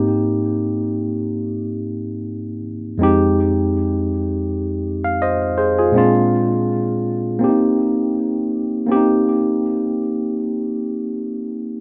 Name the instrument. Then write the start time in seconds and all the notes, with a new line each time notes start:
tine electric piano
Already playing: G#2 A#3 C4 D#4 G4
2.98 F2 G#3 C4
3.02 D#4 G4
5.04 F5
5.22 C5 D#5
5.58 G#4 C5
5.79 F4 G#4
5.92 A#2 G#3 C4
5.96 D4 F4
7.39 A#3 C4 D4
7.44 G4
7.49 D#4
8.87 A#3 C4 C#4
8.92 G4
8.96 D#4